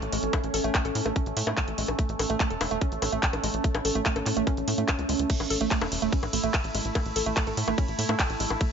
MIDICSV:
0, 0, Header, 1, 5, 480
1, 0, Start_track
1, 0, Key_signature, 3, "major"
1, 0, Tempo, 413793
1, 385, Time_signature, 4, 2, 24, 8
1, 10116, End_track
2, 0, Start_track
2, 0, Title_t, "Ambient pad"
2, 0, Program_c, 0, 92
2, 0, Note_on_c, 0, 57, 79
2, 0, Note_on_c, 0, 61, 75
2, 6132, Note_off_c, 0, 57, 0
2, 6146, Note_on_c, 0, 57, 77
2, 6146, Note_on_c, 0, 64, 82
2, 6169, Note_off_c, 0, 61, 0
2, 9985, Note_on_c, 0, 61, 78
2, 10010, Note_off_c, 0, 64, 0
2, 10116, Note_off_c, 0, 57, 0
2, 10116, Note_off_c, 0, 61, 0
2, 10116, End_track
3, 0, Start_track
3, 0, Title_t, "Synth arpeggio sound"
3, 0, Program_c, 1, 84
3, 145, Note_on_c, 1, 56, 80
3, 259, Note_off_c, 1, 56, 0
3, 385, Note_on_c, 1, 57, 83
3, 467, Note_off_c, 1, 57, 0
3, 625, Note_on_c, 1, 69, 88
3, 707, Note_off_c, 1, 69, 0
3, 745, Note_on_c, 1, 57, 103
3, 827, Note_off_c, 1, 57, 0
3, 985, Note_on_c, 1, 69, 80
3, 1034, Note_off_c, 1, 69, 0
3, 1225, Note_on_c, 1, 57, 101
3, 1307, Note_off_c, 1, 57, 0
3, 1345, Note_on_c, 1, 61, 80
3, 1427, Note_off_c, 1, 61, 0
3, 1585, Note_on_c, 1, 57, 74
3, 1667, Note_off_c, 1, 57, 0
3, 1705, Note_on_c, 1, 57, 103
3, 1787, Note_off_c, 1, 57, 0
3, 2065, Note_on_c, 1, 56, 74
3, 2179, Note_off_c, 1, 56, 0
3, 2305, Note_on_c, 1, 57, 78
3, 2387, Note_off_c, 1, 57, 0
3, 2545, Note_on_c, 1, 69, 86
3, 2627, Note_off_c, 1, 69, 0
3, 2665, Note_on_c, 1, 57, 111
3, 2747, Note_off_c, 1, 57, 0
3, 2785, Note_on_c, 1, 57, 109
3, 2899, Note_off_c, 1, 57, 0
3, 2905, Note_on_c, 1, 69, 84
3, 2954, Note_off_c, 1, 69, 0
3, 3145, Note_on_c, 1, 57, 105
3, 3227, Note_off_c, 1, 57, 0
3, 3265, Note_on_c, 1, 61, 84
3, 3347, Note_off_c, 1, 61, 0
3, 3505, Note_on_c, 1, 57, 73
3, 3587, Note_off_c, 1, 57, 0
3, 3625, Note_on_c, 1, 57, 102
3, 3707, Note_off_c, 1, 57, 0
3, 3985, Note_on_c, 1, 56, 74
3, 4099, Note_off_c, 1, 56, 0
3, 4225, Note_on_c, 1, 57, 82
3, 4307, Note_off_c, 1, 57, 0
3, 4465, Note_on_c, 1, 69, 90
3, 4547, Note_off_c, 1, 69, 0
3, 4585, Note_on_c, 1, 57, 102
3, 4667, Note_off_c, 1, 57, 0
3, 4705, Note_on_c, 1, 57, 104
3, 4819, Note_off_c, 1, 57, 0
3, 4825, Note_on_c, 1, 69, 81
3, 4874, Note_off_c, 1, 69, 0
3, 5065, Note_on_c, 1, 57, 105
3, 5147, Note_off_c, 1, 57, 0
3, 5185, Note_on_c, 1, 61, 83
3, 5267, Note_off_c, 1, 61, 0
3, 5425, Note_on_c, 1, 57, 75
3, 5507, Note_off_c, 1, 57, 0
3, 5545, Note_on_c, 1, 57, 103
3, 5627, Note_off_c, 1, 57, 0
3, 5905, Note_on_c, 1, 56, 74
3, 6019, Note_off_c, 1, 56, 0
3, 6145, Note_on_c, 1, 57, 81
3, 6227, Note_off_c, 1, 57, 0
3, 6385, Note_on_c, 1, 69, 90
3, 6467, Note_off_c, 1, 69, 0
3, 6505, Note_on_c, 1, 57, 106
3, 6587, Note_off_c, 1, 57, 0
3, 6625, Note_on_c, 1, 57, 105
3, 6739, Note_off_c, 1, 57, 0
3, 6745, Note_on_c, 1, 69, 76
3, 6794, Note_off_c, 1, 69, 0
3, 6985, Note_on_c, 1, 57, 102
3, 7067, Note_off_c, 1, 57, 0
3, 7105, Note_on_c, 1, 61, 80
3, 7187, Note_off_c, 1, 61, 0
3, 7345, Note_on_c, 1, 57, 73
3, 7427, Note_off_c, 1, 57, 0
3, 7465, Note_on_c, 1, 57, 101
3, 7547, Note_off_c, 1, 57, 0
3, 7825, Note_on_c, 1, 56, 78
3, 7939, Note_off_c, 1, 56, 0
3, 8065, Note_on_c, 1, 57, 82
3, 8147, Note_off_c, 1, 57, 0
3, 8305, Note_on_c, 1, 69, 88
3, 8387, Note_off_c, 1, 69, 0
3, 8425, Note_on_c, 1, 57, 101
3, 8507, Note_off_c, 1, 57, 0
3, 8545, Note_on_c, 1, 57, 106
3, 8659, Note_off_c, 1, 57, 0
3, 8665, Note_on_c, 1, 69, 78
3, 8714, Note_off_c, 1, 69, 0
3, 8905, Note_on_c, 1, 57, 100
3, 8987, Note_off_c, 1, 57, 0
3, 9025, Note_on_c, 1, 61, 85
3, 9107, Note_off_c, 1, 61, 0
3, 9265, Note_on_c, 1, 57, 77
3, 9347, Note_off_c, 1, 57, 0
3, 9385, Note_on_c, 1, 57, 105
3, 9467, Note_off_c, 1, 57, 0
3, 9745, Note_on_c, 1, 56, 77
3, 9859, Note_off_c, 1, 56, 0
3, 9985, Note_on_c, 1, 57, 79
3, 10067, Note_off_c, 1, 57, 0
3, 10116, End_track
4, 0, Start_track
4, 0, Title_t, "Analog synth bass"
4, 0, Program_c, 2, 38
4, 25, Note_on_c, 2, 33, 86
4, 98, Note_off_c, 2, 33, 0
4, 145, Note_on_c, 2, 33, 104
4, 219, Note_off_c, 2, 33, 0
4, 265, Note_on_c, 2, 33, 95
4, 338, Note_off_c, 2, 33, 0
4, 506, Note_on_c, 2, 33, 92
4, 579, Note_off_c, 2, 33, 0
4, 626, Note_on_c, 2, 33, 93
4, 699, Note_off_c, 2, 33, 0
4, 745, Note_on_c, 2, 33, 95
4, 819, Note_off_c, 2, 33, 0
4, 986, Note_on_c, 2, 33, 87
4, 1059, Note_off_c, 2, 33, 0
4, 1105, Note_on_c, 2, 45, 101
4, 1178, Note_off_c, 2, 45, 0
4, 1225, Note_on_c, 2, 33, 93
4, 1299, Note_off_c, 2, 33, 0
4, 1465, Note_on_c, 2, 33, 93
4, 1539, Note_off_c, 2, 33, 0
4, 1585, Note_on_c, 2, 45, 100
4, 1658, Note_off_c, 2, 45, 0
4, 1705, Note_on_c, 2, 45, 90
4, 1778, Note_off_c, 2, 45, 0
4, 1945, Note_on_c, 2, 33, 86
4, 2018, Note_off_c, 2, 33, 0
4, 2065, Note_on_c, 2, 33, 96
4, 2139, Note_off_c, 2, 33, 0
4, 2185, Note_on_c, 2, 33, 89
4, 2259, Note_off_c, 2, 33, 0
4, 2425, Note_on_c, 2, 33, 96
4, 2499, Note_off_c, 2, 33, 0
4, 2545, Note_on_c, 2, 33, 99
4, 2619, Note_off_c, 2, 33, 0
4, 2665, Note_on_c, 2, 33, 99
4, 2739, Note_off_c, 2, 33, 0
4, 2905, Note_on_c, 2, 28, 83
4, 2979, Note_off_c, 2, 28, 0
4, 3025, Note_on_c, 2, 28, 101
4, 3099, Note_off_c, 2, 28, 0
4, 3145, Note_on_c, 2, 28, 89
4, 3218, Note_off_c, 2, 28, 0
4, 3385, Note_on_c, 2, 33, 88
4, 3458, Note_off_c, 2, 33, 0
4, 3505, Note_on_c, 2, 33, 104
4, 3578, Note_off_c, 2, 33, 0
4, 3625, Note_on_c, 2, 33, 88
4, 3698, Note_off_c, 2, 33, 0
4, 3865, Note_on_c, 2, 33, 92
4, 3938, Note_off_c, 2, 33, 0
4, 3985, Note_on_c, 2, 33, 103
4, 4058, Note_off_c, 2, 33, 0
4, 4105, Note_on_c, 2, 33, 93
4, 4178, Note_off_c, 2, 33, 0
4, 4345, Note_on_c, 2, 33, 88
4, 4418, Note_off_c, 2, 33, 0
4, 4465, Note_on_c, 2, 33, 99
4, 4539, Note_off_c, 2, 33, 0
4, 4585, Note_on_c, 2, 33, 98
4, 4659, Note_off_c, 2, 33, 0
4, 4825, Note_on_c, 2, 33, 81
4, 4898, Note_off_c, 2, 33, 0
4, 4945, Note_on_c, 2, 45, 100
4, 5019, Note_off_c, 2, 45, 0
4, 5065, Note_on_c, 2, 33, 89
4, 5138, Note_off_c, 2, 33, 0
4, 5305, Note_on_c, 2, 33, 92
4, 5379, Note_off_c, 2, 33, 0
4, 5425, Note_on_c, 2, 45, 99
4, 5499, Note_off_c, 2, 45, 0
4, 5545, Note_on_c, 2, 45, 88
4, 5619, Note_off_c, 2, 45, 0
4, 5785, Note_on_c, 2, 37, 94
4, 5858, Note_off_c, 2, 37, 0
4, 5905, Note_on_c, 2, 37, 100
4, 5978, Note_off_c, 2, 37, 0
4, 6026, Note_on_c, 2, 37, 89
4, 6099, Note_off_c, 2, 37, 0
4, 6266, Note_on_c, 2, 33, 91
4, 6339, Note_off_c, 2, 33, 0
4, 6386, Note_on_c, 2, 33, 98
4, 6459, Note_off_c, 2, 33, 0
4, 6506, Note_on_c, 2, 33, 102
4, 6579, Note_off_c, 2, 33, 0
4, 6745, Note_on_c, 2, 28, 84
4, 6819, Note_off_c, 2, 28, 0
4, 6866, Note_on_c, 2, 28, 103
4, 6939, Note_off_c, 2, 28, 0
4, 6985, Note_on_c, 2, 28, 92
4, 7058, Note_off_c, 2, 28, 0
4, 7225, Note_on_c, 2, 33, 89
4, 7298, Note_off_c, 2, 33, 0
4, 7345, Note_on_c, 2, 33, 104
4, 7418, Note_off_c, 2, 33, 0
4, 7465, Note_on_c, 2, 33, 92
4, 7538, Note_off_c, 2, 33, 0
4, 7705, Note_on_c, 2, 33, 86
4, 7778, Note_off_c, 2, 33, 0
4, 7825, Note_on_c, 2, 33, 101
4, 7898, Note_off_c, 2, 33, 0
4, 7945, Note_on_c, 2, 33, 91
4, 8019, Note_off_c, 2, 33, 0
4, 8185, Note_on_c, 2, 33, 90
4, 8258, Note_off_c, 2, 33, 0
4, 8305, Note_on_c, 2, 33, 102
4, 8379, Note_off_c, 2, 33, 0
4, 8425, Note_on_c, 2, 33, 95
4, 8499, Note_off_c, 2, 33, 0
4, 8666, Note_on_c, 2, 33, 82
4, 8739, Note_off_c, 2, 33, 0
4, 8785, Note_on_c, 2, 45, 103
4, 8859, Note_off_c, 2, 45, 0
4, 8905, Note_on_c, 2, 33, 89
4, 8979, Note_off_c, 2, 33, 0
4, 9145, Note_on_c, 2, 33, 90
4, 9218, Note_off_c, 2, 33, 0
4, 9265, Note_on_c, 2, 45, 101
4, 9338, Note_off_c, 2, 45, 0
4, 9385, Note_on_c, 2, 45, 88
4, 9458, Note_off_c, 2, 45, 0
4, 9625, Note_on_c, 2, 33, 89
4, 9698, Note_off_c, 2, 33, 0
4, 9745, Note_on_c, 2, 33, 104
4, 9818, Note_off_c, 2, 33, 0
4, 9865, Note_on_c, 2, 33, 91
4, 9939, Note_off_c, 2, 33, 0
4, 10116, End_track
5, 0, Start_track
5, 0, Title_t, "Drums"
5, 25, Note_on_c, 9, 42, 37
5, 141, Note_off_c, 9, 42, 0
5, 145, Note_on_c, 9, 46, 94
5, 261, Note_off_c, 9, 46, 0
5, 265, Note_on_c, 9, 42, 40
5, 381, Note_off_c, 9, 42, 0
5, 385, Note_on_c, 9, 36, 113
5, 385, Note_on_c, 9, 42, 66
5, 385, Note_on_c, 9, 60, 86
5, 501, Note_off_c, 9, 36, 0
5, 501, Note_off_c, 9, 42, 0
5, 501, Note_off_c, 9, 60, 0
5, 506, Note_on_c, 9, 42, 37
5, 622, Note_off_c, 9, 42, 0
5, 626, Note_on_c, 9, 46, 107
5, 742, Note_off_c, 9, 46, 0
5, 745, Note_on_c, 9, 42, 41
5, 861, Note_off_c, 9, 42, 0
5, 865, Note_on_c, 9, 36, 118
5, 866, Note_on_c, 9, 39, 113
5, 866, Note_on_c, 9, 42, 65
5, 866, Note_on_c, 9, 60, 42
5, 981, Note_off_c, 9, 36, 0
5, 982, Note_off_c, 9, 39, 0
5, 982, Note_off_c, 9, 42, 0
5, 982, Note_off_c, 9, 60, 0
5, 985, Note_on_c, 9, 42, 38
5, 1101, Note_off_c, 9, 42, 0
5, 1105, Note_on_c, 9, 46, 90
5, 1221, Note_off_c, 9, 46, 0
5, 1225, Note_on_c, 9, 60, 42
5, 1341, Note_off_c, 9, 60, 0
5, 1345, Note_on_c, 9, 36, 123
5, 1345, Note_on_c, 9, 42, 63
5, 1461, Note_off_c, 9, 36, 0
5, 1461, Note_off_c, 9, 42, 0
5, 1465, Note_on_c, 9, 42, 38
5, 1581, Note_off_c, 9, 42, 0
5, 1585, Note_on_c, 9, 46, 108
5, 1701, Note_off_c, 9, 46, 0
5, 1705, Note_on_c, 9, 60, 85
5, 1821, Note_off_c, 9, 60, 0
5, 1825, Note_on_c, 9, 36, 107
5, 1825, Note_on_c, 9, 39, 111
5, 1825, Note_on_c, 9, 42, 63
5, 1941, Note_off_c, 9, 36, 0
5, 1941, Note_off_c, 9, 39, 0
5, 1941, Note_off_c, 9, 42, 0
5, 1945, Note_on_c, 9, 42, 40
5, 2061, Note_off_c, 9, 42, 0
5, 2065, Note_on_c, 9, 46, 90
5, 2181, Note_off_c, 9, 46, 0
5, 2185, Note_on_c, 9, 42, 39
5, 2185, Note_on_c, 9, 60, 43
5, 2301, Note_off_c, 9, 42, 0
5, 2301, Note_off_c, 9, 60, 0
5, 2305, Note_on_c, 9, 36, 110
5, 2305, Note_on_c, 9, 42, 72
5, 2421, Note_off_c, 9, 36, 0
5, 2421, Note_off_c, 9, 42, 0
5, 2425, Note_on_c, 9, 42, 39
5, 2541, Note_off_c, 9, 42, 0
5, 2546, Note_on_c, 9, 46, 102
5, 2546, Note_on_c, 9, 60, 41
5, 2662, Note_off_c, 9, 46, 0
5, 2662, Note_off_c, 9, 60, 0
5, 2666, Note_on_c, 9, 42, 44
5, 2782, Note_off_c, 9, 42, 0
5, 2785, Note_on_c, 9, 36, 123
5, 2785, Note_on_c, 9, 39, 124
5, 2785, Note_on_c, 9, 42, 70
5, 2901, Note_off_c, 9, 36, 0
5, 2901, Note_off_c, 9, 39, 0
5, 2901, Note_off_c, 9, 42, 0
5, 2905, Note_on_c, 9, 42, 42
5, 3021, Note_off_c, 9, 42, 0
5, 3025, Note_on_c, 9, 46, 88
5, 3025, Note_on_c, 9, 60, 83
5, 3141, Note_off_c, 9, 46, 0
5, 3141, Note_off_c, 9, 60, 0
5, 3145, Note_on_c, 9, 42, 42
5, 3261, Note_off_c, 9, 42, 0
5, 3265, Note_on_c, 9, 36, 117
5, 3265, Note_on_c, 9, 42, 69
5, 3381, Note_off_c, 9, 36, 0
5, 3381, Note_off_c, 9, 42, 0
5, 3386, Note_on_c, 9, 42, 38
5, 3502, Note_off_c, 9, 42, 0
5, 3505, Note_on_c, 9, 46, 103
5, 3505, Note_on_c, 9, 60, 42
5, 3621, Note_off_c, 9, 46, 0
5, 3621, Note_off_c, 9, 60, 0
5, 3625, Note_on_c, 9, 42, 41
5, 3741, Note_off_c, 9, 42, 0
5, 3745, Note_on_c, 9, 36, 105
5, 3745, Note_on_c, 9, 39, 110
5, 3745, Note_on_c, 9, 42, 68
5, 3861, Note_off_c, 9, 36, 0
5, 3861, Note_off_c, 9, 39, 0
5, 3861, Note_off_c, 9, 42, 0
5, 3865, Note_on_c, 9, 42, 40
5, 3865, Note_on_c, 9, 60, 41
5, 3981, Note_off_c, 9, 42, 0
5, 3981, Note_off_c, 9, 60, 0
5, 3985, Note_on_c, 9, 46, 90
5, 4101, Note_off_c, 9, 46, 0
5, 4105, Note_on_c, 9, 42, 43
5, 4221, Note_off_c, 9, 42, 0
5, 4225, Note_on_c, 9, 36, 117
5, 4225, Note_on_c, 9, 42, 72
5, 4341, Note_off_c, 9, 36, 0
5, 4341, Note_off_c, 9, 42, 0
5, 4345, Note_on_c, 9, 42, 41
5, 4345, Note_on_c, 9, 60, 72
5, 4461, Note_off_c, 9, 42, 0
5, 4461, Note_off_c, 9, 60, 0
5, 4465, Note_on_c, 9, 46, 105
5, 4581, Note_off_c, 9, 46, 0
5, 4585, Note_on_c, 9, 42, 42
5, 4701, Note_off_c, 9, 42, 0
5, 4705, Note_on_c, 9, 36, 115
5, 4705, Note_on_c, 9, 39, 123
5, 4705, Note_on_c, 9, 42, 74
5, 4821, Note_off_c, 9, 36, 0
5, 4821, Note_off_c, 9, 39, 0
5, 4821, Note_off_c, 9, 42, 0
5, 4825, Note_on_c, 9, 42, 43
5, 4825, Note_on_c, 9, 60, 41
5, 4941, Note_off_c, 9, 42, 0
5, 4941, Note_off_c, 9, 60, 0
5, 4945, Note_on_c, 9, 39, 37
5, 4945, Note_on_c, 9, 46, 95
5, 5061, Note_off_c, 9, 39, 0
5, 5061, Note_off_c, 9, 46, 0
5, 5065, Note_on_c, 9, 42, 43
5, 5181, Note_off_c, 9, 42, 0
5, 5185, Note_on_c, 9, 36, 119
5, 5185, Note_on_c, 9, 42, 68
5, 5185, Note_on_c, 9, 60, 38
5, 5301, Note_off_c, 9, 36, 0
5, 5301, Note_off_c, 9, 42, 0
5, 5301, Note_off_c, 9, 60, 0
5, 5305, Note_on_c, 9, 42, 41
5, 5421, Note_off_c, 9, 42, 0
5, 5425, Note_on_c, 9, 46, 107
5, 5541, Note_off_c, 9, 46, 0
5, 5545, Note_on_c, 9, 42, 44
5, 5661, Note_off_c, 9, 42, 0
5, 5665, Note_on_c, 9, 36, 116
5, 5665, Note_on_c, 9, 39, 118
5, 5665, Note_on_c, 9, 42, 71
5, 5665, Note_on_c, 9, 60, 80
5, 5781, Note_off_c, 9, 36, 0
5, 5781, Note_off_c, 9, 39, 0
5, 5781, Note_off_c, 9, 42, 0
5, 5781, Note_off_c, 9, 60, 0
5, 5785, Note_on_c, 9, 42, 40
5, 5901, Note_off_c, 9, 42, 0
5, 5905, Note_on_c, 9, 46, 90
5, 6021, Note_off_c, 9, 46, 0
5, 6025, Note_on_c, 9, 42, 45
5, 6141, Note_off_c, 9, 42, 0
5, 6145, Note_on_c, 9, 36, 114
5, 6145, Note_on_c, 9, 42, 72
5, 6145, Note_on_c, 9, 49, 81
5, 6145, Note_on_c, 9, 51, 68
5, 6261, Note_off_c, 9, 36, 0
5, 6261, Note_off_c, 9, 42, 0
5, 6261, Note_off_c, 9, 49, 0
5, 6261, Note_off_c, 9, 51, 0
5, 6265, Note_on_c, 9, 42, 41
5, 6265, Note_on_c, 9, 60, 36
5, 6381, Note_off_c, 9, 42, 0
5, 6381, Note_off_c, 9, 60, 0
5, 6385, Note_on_c, 9, 46, 106
5, 6501, Note_off_c, 9, 46, 0
5, 6505, Note_on_c, 9, 42, 43
5, 6621, Note_off_c, 9, 42, 0
5, 6625, Note_on_c, 9, 36, 127
5, 6625, Note_on_c, 9, 39, 125
5, 6625, Note_on_c, 9, 42, 71
5, 6625, Note_on_c, 9, 51, 71
5, 6741, Note_off_c, 9, 36, 0
5, 6741, Note_off_c, 9, 39, 0
5, 6741, Note_off_c, 9, 42, 0
5, 6741, Note_off_c, 9, 51, 0
5, 6745, Note_on_c, 9, 42, 44
5, 6745, Note_on_c, 9, 60, 76
5, 6861, Note_off_c, 9, 42, 0
5, 6861, Note_off_c, 9, 60, 0
5, 6865, Note_on_c, 9, 46, 94
5, 6981, Note_off_c, 9, 46, 0
5, 6985, Note_on_c, 9, 42, 45
5, 7101, Note_off_c, 9, 42, 0
5, 7105, Note_on_c, 9, 36, 122
5, 7105, Note_on_c, 9, 42, 68
5, 7105, Note_on_c, 9, 51, 64
5, 7221, Note_off_c, 9, 36, 0
5, 7221, Note_off_c, 9, 42, 0
5, 7221, Note_off_c, 9, 51, 0
5, 7225, Note_on_c, 9, 42, 39
5, 7225, Note_on_c, 9, 60, 37
5, 7341, Note_off_c, 9, 42, 0
5, 7341, Note_off_c, 9, 60, 0
5, 7345, Note_on_c, 9, 46, 110
5, 7461, Note_off_c, 9, 46, 0
5, 7465, Note_on_c, 9, 42, 41
5, 7581, Note_off_c, 9, 42, 0
5, 7585, Note_on_c, 9, 36, 121
5, 7585, Note_on_c, 9, 39, 119
5, 7585, Note_on_c, 9, 42, 69
5, 7585, Note_on_c, 9, 51, 66
5, 7585, Note_on_c, 9, 60, 37
5, 7701, Note_off_c, 9, 36, 0
5, 7701, Note_off_c, 9, 39, 0
5, 7701, Note_off_c, 9, 42, 0
5, 7701, Note_off_c, 9, 51, 0
5, 7701, Note_off_c, 9, 60, 0
5, 7705, Note_on_c, 9, 42, 42
5, 7821, Note_off_c, 9, 42, 0
5, 7825, Note_on_c, 9, 46, 89
5, 7941, Note_off_c, 9, 46, 0
5, 7945, Note_on_c, 9, 42, 41
5, 8061, Note_off_c, 9, 42, 0
5, 8065, Note_on_c, 9, 36, 126
5, 8065, Note_on_c, 9, 42, 70
5, 8065, Note_on_c, 9, 51, 68
5, 8065, Note_on_c, 9, 60, 82
5, 8181, Note_off_c, 9, 36, 0
5, 8181, Note_off_c, 9, 42, 0
5, 8181, Note_off_c, 9, 51, 0
5, 8181, Note_off_c, 9, 60, 0
5, 8185, Note_on_c, 9, 42, 38
5, 8301, Note_off_c, 9, 42, 0
5, 8305, Note_on_c, 9, 46, 115
5, 8421, Note_off_c, 9, 46, 0
5, 8425, Note_on_c, 9, 42, 42
5, 8541, Note_off_c, 9, 42, 0
5, 8545, Note_on_c, 9, 36, 125
5, 8545, Note_on_c, 9, 39, 123
5, 8545, Note_on_c, 9, 42, 71
5, 8545, Note_on_c, 9, 51, 66
5, 8545, Note_on_c, 9, 60, 39
5, 8661, Note_off_c, 9, 36, 0
5, 8661, Note_off_c, 9, 39, 0
5, 8661, Note_off_c, 9, 42, 0
5, 8661, Note_off_c, 9, 51, 0
5, 8661, Note_off_c, 9, 60, 0
5, 8665, Note_on_c, 9, 42, 41
5, 8781, Note_off_c, 9, 42, 0
5, 8785, Note_on_c, 9, 46, 94
5, 8901, Note_off_c, 9, 46, 0
5, 8905, Note_on_c, 9, 42, 42
5, 8905, Note_on_c, 9, 60, 38
5, 9021, Note_off_c, 9, 42, 0
5, 9021, Note_off_c, 9, 60, 0
5, 9025, Note_on_c, 9, 36, 127
5, 9025, Note_on_c, 9, 42, 66
5, 9025, Note_on_c, 9, 51, 62
5, 9141, Note_off_c, 9, 36, 0
5, 9141, Note_off_c, 9, 42, 0
5, 9141, Note_off_c, 9, 51, 0
5, 9145, Note_on_c, 9, 42, 40
5, 9261, Note_off_c, 9, 42, 0
5, 9265, Note_on_c, 9, 46, 111
5, 9381, Note_off_c, 9, 46, 0
5, 9385, Note_on_c, 9, 42, 42
5, 9385, Note_on_c, 9, 60, 77
5, 9501, Note_off_c, 9, 42, 0
5, 9501, Note_off_c, 9, 60, 0
5, 9505, Note_on_c, 9, 36, 118
5, 9505, Note_on_c, 9, 39, 125
5, 9505, Note_on_c, 9, 42, 68
5, 9505, Note_on_c, 9, 51, 63
5, 9621, Note_off_c, 9, 36, 0
5, 9621, Note_off_c, 9, 39, 0
5, 9621, Note_off_c, 9, 42, 0
5, 9621, Note_off_c, 9, 51, 0
5, 9625, Note_on_c, 9, 42, 42
5, 9741, Note_off_c, 9, 42, 0
5, 9745, Note_on_c, 9, 46, 93
5, 9861, Note_off_c, 9, 46, 0
5, 9865, Note_on_c, 9, 60, 39
5, 9981, Note_off_c, 9, 60, 0
5, 9985, Note_on_c, 9, 36, 126
5, 9985, Note_on_c, 9, 42, 66
5, 9985, Note_on_c, 9, 51, 69
5, 10101, Note_off_c, 9, 36, 0
5, 10101, Note_off_c, 9, 42, 0
5, 10101, Note_off_c, 9, 51, 0
5, 10116, End_track
0, 0, End_of_file